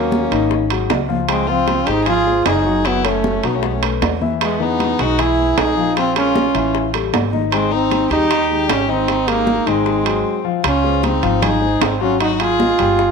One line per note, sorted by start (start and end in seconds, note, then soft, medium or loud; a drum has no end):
0.00 0.26 D#2 medium
0.00 0.24 F#3 medium
0.00 0.71 A#3 medium
0.00 0.51 C#4 medium
0.00 0.24 F#4 medium
0.00 0.25 A#4 medium
0.12 high bongo soft
0.12 high conga medium
0.12 low timbale soft
0.31 0.86 G#1 medium
0.31 0.63 D#3 medium
0.31 0.63 D#4 medium
0.31 0.64 D#5 medium
0.31 high bongo soft
0.31 high conga soft
0.31 high timbale medium
0.51 high bongo medium
0.51 high conga soft
0.70 1.02 F#3 medium
0.70 1.02 F#4 medium
0.70 1.02 G#4 medium
0.70 high bongo soft
0.70 high conga soft
0.70 high timbale medium
0.90 1.81 C#2 medium
0.90 high bongo medium
0.90 low bongo medium
0.90 high conga medium
0.90 high timbale medium
0.90 low timbale medium
1.09 1.41 F3 medium
1.09 1.41 F4 medium
1.09 1.41 F5 medium
1.09 high conga medium
1.29 1.51 G#3 medium
1.29 1.49 C4 medium
1.29 high bongo medium
1.29 high conga soft
1.29 high timbale medium
1.47 1.80 F3 medium
1.47 1.90 C4 medium
1.47 1.88 F4 medium
1.47 1.80 F4 medium
1.47 1.80 F5 medium
1.47 high conga soft
1.67 high bongo soft
1.67 high conga soft
1.67 high timbale medium
1.67 low timbale soft
1.86 2.41 G#1 medium
1.86 2.03 G#3 medium
1.86 2.07 D#4 medium
1.86 2.04 G4 medium
1.86 2.03 G#4 medium
1.86 2.03 C5 medium
1.86 high conga soft
1.86 high timbale medium
2.05 2.23 F3 medium
2.05 2.23 F4 medium
2.05 2.44 F4 loud
2.05 2.42 G#4 medium
2.05 2.23 F5 medium
2.05 high bongo medium
2.05 high conga soft
2.05 high timbale medium
2.27 2.58 G#3 medium
2.27 2.58 G#4 medium
2.27 2.59 C5 medium
2.27 high conga soft
2.45 3.37 F#1 medium
2.45 2.88 D#4 medium
2.45 2.86 G#4 medium
2.45 high bongo medium
2.45 low bongo medium
2.45 high conga soft
2.45 high timbale medium
2.45 low timbale medium
2.65 2.81 F#3 medium
2.65 2.81 F#4 medium
2.65 2.82 F#5 medium
2.65 high conga soft
2.85 3.01 F#3 medium
2.85 3.08 B3 medium
2.85 3.06 E4 medium
2.85 3.01 F#4 medium
2.85 3.01 F#5 medium
2.85 high bongo medium
2.85 high conga soft
2.85 high timbale medium
3.04 3.36 A3 medium
3.04 3.48 A3 medium
3.04 3.47 C#4 medium
3.04 3.36 A4 medium
3.04 3.37 C#5 medium
3.04 high bongo soft
3.04 high conga soft
3.04 high timbale medium
3.24 high bongo medium
3.24 high conga medium
3.24 low timbale soft
3.43 3.98 B1 medium
3.43 3.75 F#3 medium
3.43 3.58 B3 medium
3.43 3.56 D#4 medium
3.43 3.76 F#4 medium
3.43 3.76 F#5 medium
3.43 high bongo soft
3.43 high conga soft
3.43 high timbale medium
3.55 3.67 A3 medium
3.55 3.65 C#4 medium
3.63 3.76 G#3 medium
3.63 3.74 B3 soft
3.63 high bongo medium
3.63 high conga soft
3.73 3.83 A3 medium
3.73 3.82 C#4 medium
3.82 4.14 A3 medium
3.82 4.14 A4 medium
3.82 4.14 B4 medium
3.82 high bongo soft
3.82 high conga soft
3.82 high timbale medium
4.02 4.93 E2 medium
4.02 high bongo medium
4.02 low bongo medium
4.02 high conga medium
4.02 high timbale medium
4.02 low timbale medium
4.21 4.53 E3 medium
4.21 4.53 E4 medium
4.21 4.53 E5 medium
4.21 high conga medium
4.41 4.64 G#3 medium
4.41 4.63 B3 medium
4.41 high bongo medium
4.41 high timbale medium
4.60 4.92 E3 medium
4.60 5.04 B3 medium
4.60 5.01 D#4 medium
4.60 4.92 G#4 medium
4.60 4.92 D#5 medium
4.60 high conga soft
4.80 high bongo soft
4.80 high conga medium
4.80 high timbale medium
4.80 low timbale soft
4.99 5.53 B1 medium
4.99 5.15 G#3 medium
4.99 5.22 D#4 medium
4.99 5.21 F#4 medium
4.99 5.15 G#4 medium
4.99 5.15 B4 medium
4.99 high conga soft
4.99 high timbale medium
5.18 5.34 E3 medium
5.18 5.35 E4 medium
5.18 5.61 E4 loud
5.18 5.58 G#4 medium
5.18 5.35 E5 medium
5.18 high bongo medium
5.18 high conga soft
5.18 high timbale medium
5.38 5.70 G#3 medium
5.38 5.70 B4 medium
5.38 high conga soft
5.57 6.49 A#1 medium
5.57 5.98 D#4 medium
5.57 5.97 G#4 medium
5.57 high bongo medium
5.57 low bongo medium
5.57 high conga soft
5.57 high timbale medium
5.57 low timbale medium
5.76 5.93 F3 medium
5.76 5.93 F4 medium
5.76 5.93 F5 medium
5.76 high conga soft
5.96 6.12 F3 medium
5.96 6.16 C4 medium
5.96 6.13 F4 medium
5.96 6.15 F4 medium
5.96 6.13 F5 medium
5.96 high bongo medium
5.96 high conga soft
5.96 high timbale medium
6.16 6.48 G#3 medium
6.16 6.91 C#4 medium
6.16 6.71 F4 medium
6.16 6.48 G#4 medium
6.16 6.48 A#4 medium
6.16 high bongo soft
6.16 high conga soft
6.16 high timbale medium
6.36 high bongo medium
6.36 high conga medium
6.36 low timbale soft
6.54 7.09 A1 medium
6.54 6.87 E3 medium
6.54 6.87 E4 medium
6.54 6.87 E5 medium
6.54 high bongo soft
6.54 high conga soft
6.54 high timbale medium
6.75 high bongo medium
6.75 high conga soft
6.93 7.26 G3 medium
6.93 7.26 G4 medium
6.93 7.26 A4 medium
6.93 high bongo soft
6.93 high conga soft
6.93 high timbale medium
7.13 8.05 G#1 medium
7.13 high bongo medium
7.13 low bongo medium
7.13 high conga medium
7.13 high timbale medium
7.13 low timbale medium
7.32 7.65 D#3 medium
7.32 7.65 D#4 medium
7.32 7.65 D#5 medium
7.32 high conga medium
7.52 7.75 G#3 medium
7.52 7.73 C4 medium
7.52 high bongo medium
7.52 high conga soft
7.52 high timbale medium
7.71 8.04 D#3 medium
7.71 8.12 C4 loud
7.71 8.10 D#4 medium
7.71 8.04 D#4 medium
7.71 8.04 D#5 medium
7.71 high conga soft
7.91 high bongo soft
7.91 high conga medium
7.91 high timbale medium
7.91 low timbale soft
8.10 8.65 D#2 medium
8.10 8.27 G3 medium
8.10 8.72 D#4 loud
8.10 8.69 G4 medium
8.10 8.27 G4 medium
8.10 8.27 G#4 medium
8.10 high conga soft
8.10 high timbale medium
8.31 8.47 D#3 medium
8.31 8.47 D#4 medium
8.31 8.47 D#5 medium
8.31 high bongo medium
8.31 high conga soft
8.31 high timbale medium
8.50 8.82 G#3 medium
8.50 8.82 G4 medium
8.50 8.83 G#4 medium
8.50 high conga soft
8.69 9.61 G#1 medium
8.69 8.91 C#4 medium
8.69 8.91 G4 medium
8.69 high bongo medium
8.69 low bongo medium
8.69 high conga soft
8.69 high timbale loud
8.69 low timbale medium
8.88 9.04 D#3 medium
8.88 9.30 C4 loud
8.88 9.04 D#4 medium
8.88 9.28 D#4 medium
8.88 9.05 D#5 medium
8.88 high conga soft
9.08 9.24 D#3 medium
9.08 9.24 D#4 medium
9.08 9.24 D#5 medium
9.08 high bongo medium
9.08 high conga soft
9.08 high timbale medium
9.27 9.60 G#3 medium
9.27 9.70 A#3 medium
9.27 9.68 D#4 medium
9.27 9.60 G4 medium
9.27 9.60 G#4 medium
9.27 high bongo soft
9.27 high conga soft
9.27 high timbale medium
9.47 high bongo soft
9.47 high conga medium
9.47 low timbale medium
9.66 10.21 G#1 medium
9.66 9.98 D#3 medium
9.66 10.46 G#3 medium
9.66 10.45 C4 medium
9.66 9.99 D#4 medium
9.66 9.99 D#5 medium
9.66 high bongo soft
9.66 high conga soft
9.66 high timbale medium
9.86 high bongo medium
9.86 high conga soft
10.04 10.37 F#3 medium
10.04 10.37 F#4 medium
10.04 10.37 G#4 medium
10.04 high bongo soft
10.04 high conga soft
10.04 high timbale medium
10.44 10.61 F3 medium
10.44 10.61 F4 medium
10.44 10.61 F5 medium
10.64 11.19 C#2 medium
10.64 11.07 C#4 medium
10.64 11.05 F4 medium
10.64 high bongo medium
10.64 high conga soft
10.64 high timbale loud
10.84 11.16 G#3 medium
10.84 11.16 G#4 medium
10.84 11.16 C5 medium
10.84 high conga soft
11.03 11.45 C4 medium
11.03 11.44 D#4 medium
11.03 high bongo medium
11.03 high conga medium
11.03 high timbale medium
11.03 low timbale soft
11.22 11.78 G#1 medium
11.22 11.55 F3 medium
11.22 11.55 F4 medium
11.22 11.55 F5 medium
11.22 high conga soft
11.22 high timbale medium
11.42 11.85 D#4 medium
11.42 11.83 G#4 medium
11.42 high bongo medium
11.42 high conga soft
11.42 low conga medium
11.42 high timbale medium
11.61 11.93 G#3 medium
11.61 11.93 G#4 medium
11.61 11.94 C5 medium
11.61 high conga soft
11.81 12.73 G#1 medium
11.81 12.02 C4 medium
11.81 12.00 D#4 medium
11.81 high bongo medium
11.81 low bongo medium
11.81 high conga soft
11.81 high timbale loud
11.81 low timbale medium
12.01 12.17 F#3 medium
12.01 12.20 C#4 medium
12.01 12.19 F4 medium
12.01 12.17 F#4 medium
12.01 12.17 F#5 medium
12.01 high conga soft
12.20 12.52 F#3 medium
12.20 12.33 D#4 loud
12.20 12.52 F#4 medium
12.20 12.33 F#4 medium
12.20 12.52 F#5 medium
12.20 high bongo medium
12.20 high conga soft
12.20 high timbale medium
12.33 12.42 D#4 medium
12.33 12.42 F#4 medium
12.40 13.11 F4 loud
12.40 12.99 G#4 medium
12.40 high bongo soft
12.40 high conga soft
12.40 high timbale medium
12.59 12.75 B3 medium
12.59 12.76 B4 medium
12.59 12.76 D#5 medium
12.59 high bongo medium
12.59 high conga medium
12.59 low timbale soft
12.79 13.11 G1 medium
12.79 13.11 G3 medium
12.79 13.11 G4 medium
12.79 13.11 G5 medium
12.79 high bongo soft
12.79 high conga soft
12.79 high timbale medium
12.98 high bongo medium
12.98 high conga soft